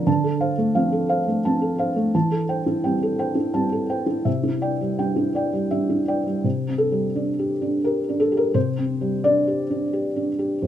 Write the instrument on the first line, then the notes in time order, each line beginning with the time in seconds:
felt piano
0.07 D3 A5
0.24 A4
0.41 C5 F5
0.58 A3
0.75 F3 C4 F5
0.92 A4
1.09 C5 F5
1.28 A3
1.45 F3 C4 A5
1.61 A4
1.78 C5 F5
1.96 A3
2.15 E3 A5
2.31 A4
2.49 C5 G5
2.66 E4
2.84 G3 C4 G5
3.03 A4
3.19 C5 G5
3.35 E4
3.54 G3 C4 A5
3.72 A4
3.89 C5 G5
4.06 E4
4.25 C3 E5
4.43 E4
4.62 D5 G5
4.81 G3
4.98 G3 D4 G5
5.16 E4
5.35 D5 G5
5.53 G3
5.71 G3 D4 E5
5.89 E4
6.08 D5 G5
6.26 G3
6.44 C3
6.68 C4
6.78 A4
6.92 G3
7.16 D4
7.39 G4
7.62 D4
7.84 G4 A#4
8.09 D4
8.20 A4
8.32 G4
8.37 A#4
8.54 C3 C5
8.78 C4
9.01 G3
9.24 D4 D5
9.47 G4
9.70 D4
9.93 G4
10.16 D4
10.39 G4
10.62 F2